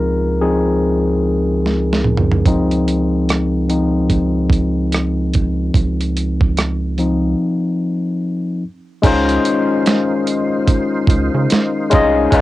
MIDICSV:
0, 0, Header, 1, 5, 480
1, 0, Start_track
1, 0, Key_signature, -5, "major"
1, 0, Tempo, 821918
1, 1435, Time_signature, 4, 2, 24, 8
1, 7251, End_track
2, 0, Start_track
2, 0, Title_t, "Tonewheel organ"
2, 0, Program_c, 0, 16
2, 5280, Note_on_c, 0, 65, 69
2, 5282, Note_on_c, 0, 63, 58
2, 5282, Note_on_c, 0, 72, 63
2, 5286, Note_on_c, 0, 51, 62
2, 7251, Note_off_c, 0, 51, 0
2, 7251, Note_off_c, 0, 63, 0
2, 7251, Note_off_c, 0, 65, 0
2, 7251, Note_off_c, 0, 72, 0
2, 7251, End_track
3, 0, Start_track
3, 0, Title_t, "Tine electric piano"
3, 0, Program_c, 1, 4
3, 0, Control_c, 1, 64, 127
3, 0, Note_on_c, 1, 53, 42
3, 0, Note_on_c, 1, 60, 37
3, 0, Note_on_c, 1, 63, 45
3, 0, Note_on_c, 1, 70, 82
3, 213, Note_off_c, 1, 70, 0
3, 242, Note_on_c, 1, 68, 65
3, 243, Note_off_c, 1, 53, 0
3, 243, Note_on_c, 1, 53, 41
3, 245, Note_off_c, 1, 60, 0
3, 245, Note_on_c, 1, 60, 40
3, 248, Note_off_c, 1, 63, 0
3, 248, Note_on_c, 1, 63, 46
3, 578, Note_off_c, 1, 53, 0
3, 579, Note_off_c, 1, 60, 0
3, 581, Note_off_c, 1, 63, 0
3, 1175, Note_off_c, 1, 68, 0
3, 1435, Note_on_c, 1, 53, 45
3, 1443, Note_on_c, 1, 60, 43
3, 1444, Note_on_c, 1, 63, 52
3, 2131, Note_off_c, 1, 53, 0
3, 2136, Note_off_c, 1, 60, 0
3, 2136, Note_off_c, 1, 63, 0
3, 2156, Note_on_c, 1, 53, 36
3, 2159, Note_on_c, 1, 60, 33
3, 2161, Note_on_c, 1, 63, 41
3, 2372, Note_off_c, 1, 53, 0
3, 2374, Note_off_c, 1, 60, 0
3, 2375, Note_off_c, 1, 63, 0
3, 4078, Note_on_c, 1, 53, 44
3, 4081, Note_on_c, 1, 60, 39
3, 4085, Note_on_c, 1, 63, 49
3, 4416, Note_off_c, 1, 53, 0
3, 4417, Note_off_c, 1, 60, 0
3, 4420, Note_off_c, 1, 63, 0
3, 5043, Control_c, 1, 64, 0
3, 5269, Note_on_c, 1, 56, 80
3, 5275, Note_on_c, 1, 61, 75
3, 5283, Note_on_c, 1, 63, 82
3, 5289, Note_on_c, 1, 65, 73
3, 5296, Note_on_c, 1, 72, 100
3, 5393, Control_c, 1, 64, 127
3, 6016, Note_off_c, 1, 56, 0
3, 6020, Note_off_c, 1, 61, 0
3, 6023, Note_off_c, 1, 63, 0
3, 6027, Note_off_c, 1, 65, 0
3, 6030, Note_off_c, 1, 72, 0
3, 6950, Note_on_c, 1, 56, 89
3, 6957, Note_on_c, 1, 61, 78
3, 6965, Note_on_c, 1, 63, 77
3, 6968, Note_on_c, 1, 65, 77
3, 6976, Note_on_c, 1, 75, 94
3, 7150, Note_off_c, 1, 56, 0
3, 7153, Note_off_c, 1, 61, 0
3, 7157, Note_off_c, 1, 63, 0
3, 7159, Note_off_c, 1, 65, 0
3, 7163, Note_off_c, 1, 75, 0
3, 7187, Note_on_c, 1, 56, 79
3, 7196, Note_on_c, 1, 61, 78
3, 7202, Note_on_c, 1, 63, 81
3, 7210, Note_on_c, 1, 65, 77
3, 7215, Note_on_c, 1, 71, 72
3, 7251, Note_off_c, 1, 56, 0
3, 7251, Note_off_c, 1, 61, 0
3, 7251, Note_off_c, 1, 63, 0
3, 7251, Note_off_c, 1, 65, 0
3, 7251, Note_off_c, 1, 71, 0
3, 7251, End_track
4, 0, Start_track
4, 0, Title_t, "Analog synth bass"
4, 0, Program_c, 2, 38
4, 0, Note_on_c, 2, 37, 71
4, 1416, Note_off_c, 2, 37, 0
4, 1438, Note_on_c, 2, 37, 78
4, 3333, Note_off_c, 2, 37, 0
4, 3356, Note_on_c, 2, 37, 72
4, 4293, Note_off_c, 2, 37, 0
4, 5282, Note_on_c, 2, 37, 100
4, 5480, Note_off_c, 2, 37, 0
4, 6472, Note_on_c, 2, 37, 92
4, 6596, Note_off_c, 2, 37, 0
4, 6625, Note_on_c, 2, 49, 95
4, 6702, Note_off_c, 2, 49, 0
4, 6969, Note_on_c, 2, 36, 97
4, 7164, Note_off_c, 2, 36, 0
4, 7200, Note_on_c, 2, 37, 99
4, 7251, Note_off_c, 2, 37, 0
4, 7251, End_track
5, 0, Start_track
5, 0, Title_t, "Drums"
5, 970, Note_on_c, 9, 38, 44
5, 1028, Note_off_c, 9, 38, 0
5, 1126, Note_on_c, 9, 38, 66
5, 1185, Note_off_c, 9, 38, 0
5, 1193, Note_on_c, 9, 45, 66
5, 1252, Note_off_c, 9, 45, 0
5, 1269, Note_on_c, 9, 43, 81
5, 1328, Note_off_c, 9, 43, 0
5, 1352, Note_on_c, 9, 43, 70
5, 1410, Note_off_c, 9, 43, 0
5, 1434, Note_on_c, 9, 36, 75
5, 1435, Note_on_c, 9, 42, 72
5, 1492, Note_off_c, 9, 36, 0
5, 1493, Note_off_c, 9, 42, 0
5, 1584, Note_on_c, 9, 42, 39
5, 1643, Note_off_c, 9, 42, 0
5, 1681, Note_on_c, 9, 42, 55
5, 1740, Note_off_c, 9, 42, 0
5, 1922, Note_on_c, 9, 42, 59
5, 1930, Note_on_c, 9, 37, 90
5, 1980, Note_off_c, 9, 42, 0
5, 1988, Note_off_c, 9, 37, 0
5, 2159, Note_on_c, 9, 42, 48
5, 2217, Note_off_c, 9, 42, 0
5, 2392, Note_on_c, 9, 36, 66
5, 2392, Note_on_c, 9, 42, 70
5, 2450, Note_off_c, 9, 36, 0
5, 2451, Note_off_c, 9, 42, 0
5, 2625, Note_on_c, 9, 36, 76
5, 2642, Note_on_c, 9, 42, 58
5, 2683, Note_off_c, 9, 36, 0
5, 2700, Note_off_c, 9, 42, 0
5, 2874, Note_on_c, 9, 42, 69
5, 2887, Note_on_c, 9, 37, 85
5, 2933, Note_off_c, 9, 42, 0
5, 2945, Note_off_c, 9, 37, 0
5, 3116, Note_on_c, 9, 42, 55
5, 3125, Note_on_c, 9, 36, 76
5, 3174, Note_off_c, 9, 42, 0
5, 3183, Note_off_c, 9, 36, 0
5, 3354, Note_on_c, 9, 36, 87
5, 3360, Note_on_c, 9, 42, 63
5, 3412, Note_off_c, 9, 36, 0
5, 3418, Note_off_c, 9, 42, 0
5, 3508, Note_on_c, 9, 42, 42
5, 3566, Note_off_c, 9, 42, 0
5, 3601, Note_on_c, 9, 42, 58
5, 3660, Note_off_c, 9, 42, 0
5, 3742, Note_on_c, 9, 36, 75
5, 3801, Note_off_c, 9, 36, 0
5, 3839, Note_on_c, 9, 42, 59
5, 3846, Note_on_c, 9, 37, 93
5, 3897, Note_off_c, 9, 42, 0
5, 3905, Note_off_c, 9, 37, 0
5, 4076, Note_on_c, 9, 42, 50
5, 4134, Note_off_c, 9, 42, 0
5, 5277, Note_on_c, 9, 36, 91
5, 5278, Note_on_c, 9, 49, 85
5, 5281, Note_on_c, 9, 42, 80
5, 5335, Note_off_c, 9, 36, 0
5, 5337, Note_off_c, 9, 49, 0
5, 5339, Note_off_c, 9, 42, 0
5, 5426, Note_on_c, 9, 42, 45
5, 5484, Note_off_c, 9, 42, 0
5, 5520, Note_on_c, 9, 42, 69
5, 5578, Note_off_c, 9, 42, 0
5, 5759, Note_on_c, 9, 42, 78
5, 5767, Note_on_c, 9, 38, 110
5, 5817, Note_off_c, 9, 42, 0
5, 5825, Note_off_c, 9, 38, 0
5, 5998, Note_on_c, 9, 42, 61
5, 6057, Note_off_c, 9, 42, 0
5, 6235, Note_on_c, 9, 36, 78
5, 6235, Note_on_c, 9, 42, 86
5, 6293, Note_off_c, 9, 36, 0
5, 6294, Note_off_c, 9, 42, 0
5, 6468, Note_on_c, 9, 36, 94
5, 6482, Note_on_c, 9, 42, 60
5, 6526, Note_off_c, 9, 36, 0
5, 6541, Note_off_c, 9, 42, 0
5, 6717, Note_on_c, 9, 42, 82
5, 6730, Note_on_c, 9, 38, 108
5, 6776, Note_off_c, 9, 42, 0
5, 6788, Note_off_c, 9, 38, 0
5, 6955, Note_on_c, 9, 42, 68
5, 6966, Note_on_c, 9, 36, 88
5, 7014, Note_off_c, 9, 42, 0
5, 7025, Note_off_c, 9, 36, 0
5, 7196, Note_on_c, 9, 36, 93
5, 7197, Note_on_c, 9, 42, 84
5, 7251, Note_off_c, 9, 36, 0
5, 7251, Note_off_c, 9, 42, 0
5, 7251, End_track
0, 0, End_of_file